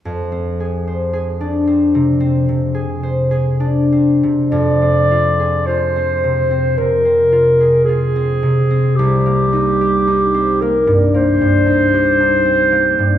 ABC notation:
X:1
M:4/4
L:1/16
Q:1/4=55
K:Fdor
V:1 name="Clarinet"
z16 | d4 c4 B4 A4 | G6 B2 c8 |]
V:2 name="Harp"
F,, C A c A D C C, C C, A c A D C C, | F,, C F A F C C, C C, C F A F C C, C | C,, B, E G E C B, G,, B, G,, E G E C B, G,, |]